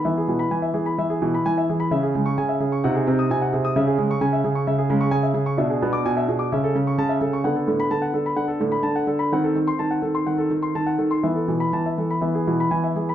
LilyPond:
<<
  \new Staff \with { instrumentName = "Grand piano" } { \time 4/4 \key cis \minor \tempo 4 = 129 << { e''16 gis'16 b,16 b''16 gis''16 e''16 gis'16 b''16 e''16 gis'16 b,16 b''16 gis''16 e''16 gis'16 b''16 | e''16 gis'16 gis16 cis'''16 gis''16 e''16 gis'16 cis'''16 fis''16 gis'16 bis16 dis'''16 gis''16 fis''16 gis'16 dis'''16 | e''16 gis'16 gis16 cis'''16 gis''16 e''16 gis'16 cis'''16 e''16 gis'16 gis16 cis'''16 gis''16 e''16 gis'16 cis'''16 | \key e \mixolydian e''16 gis'16 b16 d'''16 gis''16 e''16 gis'16 d'''16 e''16 a'16 cis16 cis'''16 a''16 e''16 a'16 cis'''16 |
fis''16 a'16 a,16 b''16 a''16 fis''16 a'16 b''16 fis''16 a'16 a,16 b''16 a''16 fis''16 a'16 b''16 | fis''16 a'16 r16 bis''16 a''16 fis''16 a'16 bis''16 fis''16 a'16 dis16 bis''16 a''16 fis''16 a'16 bis''16 | e''16 a'16 b,16 b''16 a''16 e''16 a'16 b''16 e''16 gis'16 b,16 b''16 gis''16 e''16 gis'16 b''16 | } \\ { b1 | cis'2 dis'2 | cis'1 | d'2 cis'2 |
b1 | bis1 | b2 b2 | } >> }
  \new Staff \with { instrumentName = "Grand piano" } { \clef bass \time 4/4 \key cis \minor e8 e8 e8 e8 e8 e8 e8 e8 | cis8 cis8 cis8 cis8 bis,8 bis,8 bis,8 bis,8 | cis8 cis8 cis8 cis8 cis8 cis8 cis8 cis8 | \key e \mixolydian b,8 b,8 b,8 b,8 cis8 r8 cis8 cis8 |
d8 d8 d8 d8 d8 d8 d8 d8 | dis8 dis8 dis8 dis8 dis8 r8 dis8 dis8 | e8 e8 e8 e8 e8 e8 e8 e8 | }
>>